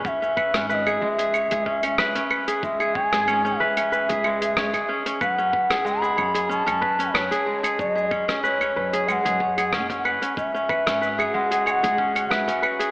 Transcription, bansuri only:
0.05 E5 F#5
0.70 E5
0.74 D#5
1.01 E5
2.63 E5
2.95 G#5
3.59 E5
5.22 F#5
5.86 B5
6.51 A5
7.15 C#5
7.79 D#5
8.44 C#5
9.08 F#5 G#5
10.38 E5
11.34 F#5
11.66 G#5
11.71 F#5
12.31 E5

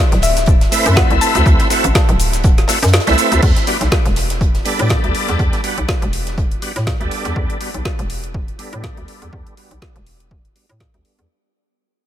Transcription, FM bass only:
0.12 D1
0.86 F#2
1.10 C2
1.35 D2
1.46 D2
1.84 A1
2.09 D1
2.83 F#2
3.07 C2
3.32 D2
3.43 E2
3.81 B1
4.05 E1
4.79 A2
5.04 D2
5.28 E2
5.39 E2
5.78 B1
6.02 E1
6.76 A2
7.01 D2
7.25 E2
7.36 E2
7.74 B1
7.99 E1
8.73 A2
8.97 D2
9.22 E2
9.33 E2
9.71 B1
9.96 E1
10.69 A2
10.94 D2
11.19 E2

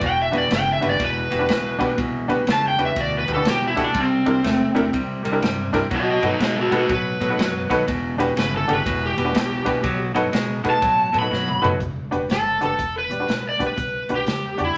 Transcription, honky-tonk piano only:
0.32 D4 F#4 G4 B4
0.81 D4 F#4 G4 B4
1.31 G4 B4
1.39 D4 F#4 G4 B4
1.79 D4 F#4 G4 B4
2.28 D4 F#4 G4 B4
2.78 D4 F#4 G4 B4
3.27 G4 B4
3.36 D4 F#4 G4 B4
3.76 D4 F#4 G4 A4
4.26 D4 E4 G4 A#4
4.75 D4 E4 G4 A#4
5.23 G4 A#4
5.32 D4 E4 G4 A#4
5.73 D4 E4 G4 A#4
6.23 D#4 F#4 A4 B4
6.71 D#4 F#4 A4 B4
7.21 A4 B4
7.30 D#4 F#4 A4 B4
7.70 D#4 F#4 A4 B4
8.18 D4 F#4 G4 B4
8.68 D4 F#4 G4 A4
9.17 G4 B4
9.25 D4 F#4 G4 B4
9.65 D4 F#4 G4 B4
10.15 D#4 F#4 A4 B4
10.64 D#4 F#4 A4 B4
11.13 A4 B4
11.21 D#4 F#4 A4 B4
11.62 D#4 F#4 A4 B4
12.11 D4 F#4 G4 B4
12.61 D4 F#4 G4 B4
13.10 G4 D5
13.20 D4 F#4 G4 B4
13.59 D4 F#4 G4 B4
14.10 D4 F#4 G4 B4
14.58 D4 F#4 G4 D5

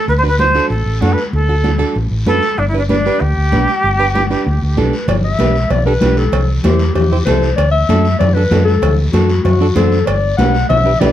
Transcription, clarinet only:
4.77 B4
5.08 D5
5.24 E5
5.71 D5
5.86 B4
6.18 A4
6.64 G4
6.95 G4
7.25 C5
7.56 D5
7.71 E5
8.19 D5
8.34 B4
8.65 A4
9.13 F#4
9.44 F#4
9.76 A4
10.06 D5
10.37 F#5
10.69 E5
11.00 D5

